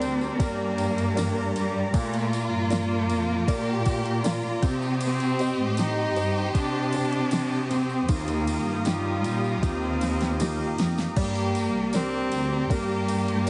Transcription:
Already playing: grand piano G3 D4 G4 A#4, cello C4, violin section D4, analog synth pad G4 A#4 D5 A#5
0.01 cello section D2, ride, tambourine
0.21 tambourine
0.39 cello section G2, grand piano D4 G4 A#4, kick, ride, tambourine
0.44 cello A#3
0.78 ride, tambourine
0.98 ride, tambourine
1.16 grand piano D4 G4 A#4, snare, ride, tambourine
1.56 ride, tambourine
1.60 cello G3
1.93 grand piano A#2, cello section A#2, violin section F4, analog synth pad F4 D6, kick, ride, tambourine
1.98 cello A3
2.14 ride, tambourine
2.33 cello A#3, ride, tambourine
2.52 cello section G2
2.70 grand piano F4 A#4 D5, snare, ride, tambourine
3.10 cello section F2, ride, tambourine
3.47 cello section A#2, grand piano F4 A#4 D5, violin section G4, kick, ride, tambourine
3.86 kick, ride, tambourine
4.05 ride
4.23 violin section F4, grand piano F4 A#4 D5, snare, ride, tambourine
4.62 cello section C3, grand piano C4, analog synth pad G4 C5 C6 D#6, violin section G4, kick, ride, tambourine
4.82 tambourine
5.01 cello C4, ride, tambourine
5.20 ride, tambourine
5.39 grand piano G4 C5 D#5, ride, tambourine
5.59 cello section A2
5.77 cello D#4, snare, ride, tambourine
6.16 cello section G2, grand piano G4 C5 G5, ride, tambourine
6.36 tambourine
6.55 cello section C3, cello D4, kick, ride, tambourine
6.93 grand piano G4 C5 G5, ride, tambourine
7.12 ride
7.31 snare, ride, tambourine
7.70 grand piano C4, cello C4, ride, tambourine
7.89 tambourine
8.03 cello C4
8.09 cello section D#2, grand piano D#3, cello A#3, violin section F4, analog synth pad F5 A#5 D#6, kick, ride, tambourine
8.28 ride, tambourine
8.47 ride, tambourine
8.66 cello section G2
8.85 cello G3, grand piano D#4 F4 G4, snare, ride, tambourine
9.24 cello section A#2, ride, tambourine
9.44 tambourine
9.62 cello section D#2, cello C4, grand piano D#4 F4 G4, kick, snare, ride, tambourine
10.01 snare, ride, tambourine
10.20 snare, ride, tambourine
10.40 cello A#3, grand piano D#4 F4 G4, snare, ride, tambourine
10.78 cello section F2, snare, ride, tambourine
10.98 snare, tambourine
11.16 cello section G2, grand piano G3, cello A#3, violin section G4, analog synth pad D5 D6, kick, crash, tambourine
11.35 ride, tambourine
11.55 ride, tambourine
11.74 cello section C2
11.92 cello C4, grand piano D4 G4 A#4, violin section G4, snare, ride, tambourine
12.32 cello section D2, ride, tambourine
12.70 cello section G2, cello A#3, grand piano D4 G4 A#4, kick, ride, tambourine
13.08 ride, tambourine
13.28 ride

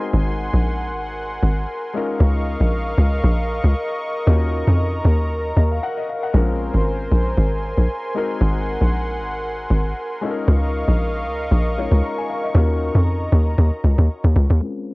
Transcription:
Already playing: grand piano G#3 C4 D#4 F#4 A#4, analog synth pad A#4 F#5 G#5 C6
0.13 log drum bass G#1
0.53 log drum bass A#1
0.91 log drum bass G#1
1.43 log drum bass G#1
1.94 grand piano G#3 C#4 D#4 F4 A#4, analog synth pad D#5 F5 C#6
2.20 log drum bass C#2
2.60 log drum bass A#1
2.98 log drum bass C#2
3.24 log drum bass A#1
3.64 log drum bass C#2
4.26 log drum bass D#2, grand piano C#4 D#4 F4 F#4 A#4, analog synth pad A#5
4.67 log drum bass F2
5.05 log drum bass D#2
5.57 log drum bass D#2, grand piano D#5
5.71 grand piano F5
5.83 grand piano F#5
5.97 grand piano D#5
6.09 grand piano F5
6.23 grand piano F#5
6.33 log drum bass A#1, grand piano G#3 C4 C#4 F4 A#4, analog synth pad C5 G#5 C6
6.74 log drum bass G#1
7.12 log drum bass A#1
7.38 log drum bass G#1
7.78 log drum bass A#1
8.14 grand piano G#3 C4 D#4 F#4 A#4, analog synth pad F#5
8.41 log drum bass G#1
8.81 log drum bass A#1
9.19 log drum bass G#1
9.70 log drum bass G#1
10.21 grand piano G#3 C#4 D#4 F4 A4, analog synth pad A#4 D#5 F5 C#6
10.31 grand piano A#4
10.48 log drum bass C#2
10.88 log drum bass A#1
11.26 log drum bass C#2
11.51 log drum bass A#1
11.77 grand piano G#3 C#4 D#4 F4 C#5
11.92 log drum bass C#2
12.04 grand piano A#5
12.18 grand piano G#5
12.30 grand piano F5
12.44 grand piano D#5
12.54 log drum bass D#2, grand piano C#4 D#4 F4 F#4 A#4, analog synth pad D#5 A#5
12.95 log drum bass F2
13.32 log drum bass D#2
13.58 log drum bass D#2
13.84 log drum bass C#2
13.98 log drum bass D#2
14.24 log drum bass D#2
14.36 log drum bass C#2
14.50 log drum bass D#2
14.61 grand piano G#3 C4 C#4 F4 A#4, analog synth pad A#4 C5 G#5 C6

